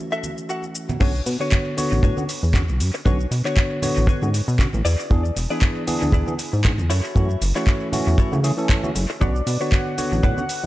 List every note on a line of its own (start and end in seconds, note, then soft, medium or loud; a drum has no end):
0.00 0.97 E3 medium
0.00 0.97 A3 medium
0.00 0.98 C#4 medium
0.00 0.98 F#4 medium
0.12 0.31 F#4 loud
0.12 0.31 A4 loud
0.12 0.31 E5 loud
0.12 shaker soft
0.23 high conga medium
0.23 shaker medium
0.38 shaker soft
0.49 0.64 F#4 medium
0.49 0.64 A4 medium
0.49 0.64 F#5 medium
0.49 shaker soft
0.64 shaker soft
0.75 muted clean electric guitar stroke soft
0.75 shaker medium
0.89 high conga medium
0.89 low conga medium
0.89 shaker soft
1.00 1.21 B1 medium
1.00 1.11 D3 medium
1.00 1.11 B3 medium
1.00 1.12 C#4 medium
1.00 1.21 D4 loud
1.00 1.12 F#4 loud
1.00 1.21 F#4 loud
1.00 1.21 B4 medium
1.00 1.21 C#5 loud
1.00 kick loud
1.00 crash loud
1.00 shaker soft
1.15 shaker soft
1.26 1.37 B2 medium
1.26 open hi-hat loud
1.26 shaker medium
1.40 1.74 D3 medium
1.40 1.75 B3 medium
1.40 1.72 D4 medium
1.40 1.75 F#4 medium
1.40 1.72 F#4 medium
1.40 1.72 B4 medium
1.40 1.75 C#5 medium
1.40 1.72 C#5 medium
1.40 shaker soft
1.52 kick loud
1.52 clap loud
1.52 shaker soft
1.77 2.14 D3 medium
1.77 2.14 B3 medium
1.77 2.14 F#4 loud
1.77 2.14 C#5 medium
1.77 open hi-hat loud
1.77 high conga medium
1.77 shaker medium
1.92 2.00 A1 medium
1.92 shaker soft
2.03 2.14 A2 medium
2.03 2.17 D4 medium
2.03 2.18 F#4 medium
2.03 2.17 B4 medium
2.03 2.17 C#5 medium
2.03 kick loud
2.03 shaker soft
2.17 2.22 D3 medium
2.17 2.23 B3 medium
2.17 2.23 C#4 medium
2.17 2.23 F#4 medium
2.17 high conga medium
2.17 shaker soft
2.29 muted clean electric guitar stroke soft
2.29 open hi-hat loud
2.29 shaker medium
2.43 2.70 E2 medium
2.43 shaker soft
2.54 2.61 D3 medium
2.54 2.61 B3 medium
2.54 2.61 C#4 medium
2.54 2.61 F#4 medium
2.54 kick loud
2.54 clap loud
2.54 shaker soft
2.68 2.81 B1 medium
2.68 high conga medium
2.68 shaker soft
2.80 2.91 F#2 medium
2.80 open hi-hat loud
2.80 shaker medium
2.94 muted clean electric guitar stroke medium
2.94 shaker soft
3.05 3.26 B1 loud
3.05 3.16 D3 medium
3.05 3.17 B3 medium
3.05 3.17 C#4 medium
3.05 3.26 D4 loud
3.05 3.26 F#4 loud
3.05 3.17 F#4 loud
3.05 3.26 B4 medium
3.05 3.26 C#5 loud
3.05 kick loud
3.05 shaker soft
3.20 shaker soft
3.31 3.42 B2 medium
3.31 open hi-hat loud
3.31 shaker medium
3.45 3.79 D3 medium
3.45 3.80 B3 medium
3.45 3.77 D4 medium
3.45 3.80 F#4 medium
3.45 3.77 F#4 medium
3.45 3.77 B4 medium
3.45 3.77 C#5 loud
3.45 3.80 C#5 medium
3.45 clap soft
3.45 shaker soft
3.57 kick loud
3.57 clap loud
3.57 shaker soft
3.82 4.19 D3 medium
3.82 4.19 B3 medium
3.82 4.19 F#4 loud
3.82 4.19 C#5 medium
3.82 open hi-hat loud
3.82 high conga medium
3.82 low conga medium
3.82 shaker medium
3.97 4.06 A1 medium
3.97 shaker soft
4.07 4.22 D4 medium
4.07 4.22 F#4 medium
4.07 4.22 B4 medium
4.07 4.23 C#5 medium
4.07 kick loud
4.07 shaker soft
4.22 4.42 G#2 medium
4.22 4.28 D3 medium
4.22 4.28 B3 medium
4.22 4.28 C#4 medium
4.22 4.28 F#4 medium
4.22 high conga medium
4.22 shaker soft
4.34 muted clean electric guitar stroke soft
4.34 open hi-hat loud
4.34 shaker medium
4.48 4.67 B2 medium
4.48 shaker soft
4.59 4.66 D3 medium
4.59 4.66 B3 medium
4.59 4.66 C#4 medium
4.59 4.67 F#4 medium
4.59 kick loud
4.59 clap loud
4.59 shaker soft
4.73 4.83 A1 loud
4.73 high conga medium
4.73 shaker soft
4.85 4.96 E2 loud
4.85 5.36 E4 medium
4.85 5.36 G#4 medium
4.85 5.36 B4 medium
4.85 5.36 D5 medium
4.85 open hi-hat loud
4.85 shaker medium
5.00 shaker soft
5.10 5.31 E2 loud
5.10 5.21 E3 medium
5.10 5.22 B3 medium
5.10 5.22 D4 medium
5.10 5.22 G#4 loud
5.10 kick loud
5.10 shaker soft
5.25 shaker soft
5.36 5.47 E1 medium
5.36 open hi-hat loud
5.36 shaker medium
5.50 5.85 E3 medium
5.50 5.85 B3 medium
5.50 5.85 D4 medium
5.50 5.82 E4 medium
5.50 5.85 G#4 medium
5.50 5.82 G#4 medium
5.50 5.82 B4 medium
5.50 5.82 D5 loud
5.50 shaker soft
5.62 kick loud
5.62 clap loud
5.62 shaker soft
5.87 6.24 E3 medium
5.87 6.24 B3 medium
5.87 6.24 D4 medium
5.87 6.24 G#4 loud
5.87 open hi-hat loud
5.87 high conga medium
5.87 shaker medium
6.02 6.11 D2 medium
6.02 shaker soft
6.12 6.24 D2 medium
6.12 6.28 E4 medium
6.12 6.28 G#4 medium
6.12 6.28 B4 medium
6.12 6.28 D5 medium
6.12 kick loud
6.12 shaker soft
6.27 6.33 E3 medium
6.27 6.33 B3 medium
6.27 6.33 D4 medium
6.27 6.33 G#4 medium
6.27 high conga medium
6.27 shaker soft
6.38 muted clean electric guitar stroke soft
6.38 open hi-hat loud
6.38 shaker medium
6.53 6.80 G#2 medium
6.53 shaker soft
6.64 6.71 E3 medium
6.64 6.71 B3 medium
6.64 6.71 D4 medium
6.64 6.72 G#4 medium
6.64 kick loud
6.64 clap loud
6.64 shaker soft
6.78 6.92 E2 medium
6.78 high conga medium
6.78 shaker soft
6.90 7.01 F#2 medium
6.90 7.41 E4 medium
6.90 7.41 F#4 medium
6.90 7.41 A4 medium
6.90 7.42 C#5 loud
6.90 open hi-hat loud
6.90 shaker medium
7.05 shaker soft
7.15 7.36 F#2 loud
7.15 7.27 E3 loud
7.15 7.27 A3 medium
7.15 7.27 C#4 medium
7.15 7.27 F#4 loud
7.15 kick loud
7.15 shaker soft
7.31 shaker soft
7.42 7.53 F#1 medium
7.42 open hi-hat loud
7.42 shaker medium
7.55 7.90 E3 medium
7.55 7.90 A3 medium
7.55 7.90 C#4 medium
7.55 7.87 E4 medium
7.55 7.90 F#4 medium
7.55 7.87 F#4 medium
7.55 7.87 A4 medium
7.55 7.87 C#5 loud
7.55 clap soft
7.55 shaker soft
7.67 kick loud
7.67 clap loud
7.67 shaker soft
7.92 8.29 E3 medium
7.92 8.29 A3 medium
7.92 8.29 C#4 medium
7.92 8.29 F#4 loud
7.92 open hi-hat loud
7.92 high conga medium
7.92 low conga medium
7.92 shaker medium
8.07 8.16 E2 medium
8.07 shaker soft
8.18 8.33 E4 medium
8.18 8.33 F#4 medium
8.18 8.33 A4 medium
8.18 8.33 C#5 medium
8.18 kick loud
8.18 shaker soft
8.32 8.52 C#3 medium
8.32 8.38 E3 medium
8.32 8.38 A3 medium
8.32 8.38 C#4 medium
8.32 8.38 F#4 medium
8.32 high conga medium
8.32 shaker soft
8.43 8.51 E3 loud
8.43 8.51 A3 medium
8.43 8.51 C#4 medium
8.43 8.51 G#4 loud
8.43 muted clean electric guitar stroke soft
8.43 open hi-hat loud
8.43 shaker medium
8.57 8.80 E3 loud
8.57 8.80 A3 medium
8.57 8.80 C#4 medium
8.57 8.81 A4 loud
8.57 shaker soft
8.69 kick loud
8.69 clap loud
8.69 shaker soft
8.83 8.89 E3 medium
8.83 8.89 A3 medium
8.83 8.89 C#4 medium
8.83 8.90 F#4 medium
8.83 high conga medium
8.83 shaker soft
8.95 9.06 F#1 medium
8.95 open hi-hat loud
8.95 shaker medium
9.10 muted clean electric guitar stroke loud
9.10 shaker soft
9.20 9.42 B1 loud
9.20 9.32 D3 medium
9.20 9.32 B3 medium
9.20 9.32 C#4 medium
9.20 9.41 D4 loud
9.20 9.41 F#4 loud
9.20 9.32 F#4 loud
9.20 9.41 B4 loud
9.20 9.41 C#5 loud
9.20 9.75 D5 loud
9.20 kick loud
9.20 shaker soft
9.36 shaker soft
9.47 9.58 B2 medium
9.47 open hi-hat loud
9.47 shaker medium
9.60 9.95 D3 medium
9.60 9.95 B3 medium
9.60 9.92 D4 medium
9.60 9.95 F#4 medium
9.60 9.92 F#4 medium
9.60 9.92 B4 medium
9.60 9.92 C#5 loud
9.60 9.95 C#5 medium
9.60 shaker soft
9.72 10.24 F#5 loud
9.72 kick loud
9.72 clap loud
9.72 shaker soft
9.97 10.34 D3 loud
9.97 10.34 B3 medium
9.97 10.35 F#4 loud
9.97 10.35 C#5 medium
9.97 open hi-hat loud
9.97 high conga medium
9.97 shaker medium
10.12 10.21 A1 medium
10.12 shaker soft
10.23 10.35 A2 medium
10.23 10.38 D4 medium
10.23 10.38 F#4 medium
10.23 10.38 B4 medium
10.23 10.38 C#5 medium
10.23 10.66 F#5 loud
10.23 kick loud
10.23 shaker soft
10.37 10.43 D3 medium
10.37 10.43 B3 medium
10.37 10.43 C#4 medium
10.37 10.43 F#4 medium
10.37 high conga medium
10.37 shaker soft
10.49 muted clean electric guitar stroke soft
10.49 open hi-hat loud
10.49 shaker medium